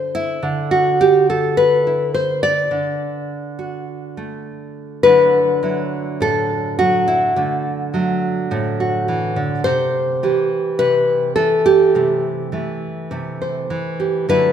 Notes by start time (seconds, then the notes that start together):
Already playing: D3 A3 C5
0.15 E4
0.43 D3
0.71 F#4
1.01 G4
1.30 A4
1.57 B4
1.87 E4
2.14 C5
2.43 D5
2.71 D3
3.59 F#4
4.17 A3
5.03 D3 F#3 A3 E4 B4
5.63 F#3 E4
6.20 A2 A4
6.79 F#3 F#4
7.08 E4
7.36 D3 A3
7.94 F#3 A3
8.51 A2 A3
8.80 F#4
9.08 E3
9.36 D3
9.64 C3 C5
10.23 E3 G4
10.79 C3 B4
11.36 E3 A4
11.66 G4
11.95 C3 A3
12.52 E3 A3
13.11 C3 A3
13.42 C5
13.70 E3
14.00 G4
14.29 D3 F#3 A3 E4 B4